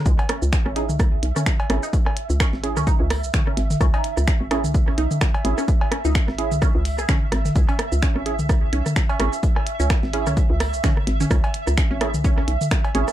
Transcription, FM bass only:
X:1
M:4/4
L:1/16
Q:"Swing 16ths" 1/4=128
K:C#m
V:1 name="FM bass" clef=bass
C,, z2 C,, z G,,,2 C,,3 B,,, z3 G,,, z | z3 C,, z G,,,2 C,, z C,,2 B,,, z2 G,,, z | C,, z2 C,, z G,,,2 C,,3 B,,, z3 G,,, z | z3 C,, z G,,,2 C,, z C,,2 B,,, z2 G,,, z |
C,, z2 C,, z G,,,2 C,,3 B,,, z3 G,,, z | z3 C,, z G,,,2 C,, z C,,2 B,,, z2 G,,, z | C,, z2 C,, z G,,,2 C,,3 B,,, z3 G,,, z |]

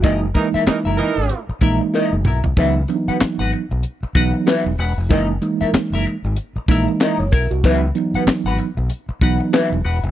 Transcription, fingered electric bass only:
X:1
M:4/4
L:1/16
Q:"Swing 16ths" 1/4=95
K:C#dor
V:1 name="Fingered electric bass" clef=bass
F,,,2 z3 F,,, z G,,, z2 A,,, z2 F,,, B,,, ^B,,, | C,,2 z3 G,,, z B,,, z2 B,,, z2 E,,, E,,, ^E,,, | F,,,2 z3 F,,, z G,,, z2 A,,, z2 F,,, B,,, ^B,,, | C,,2 z3 G,,, z B,,, z2 B,,, z2 E,,, E,,, ^E,,, |]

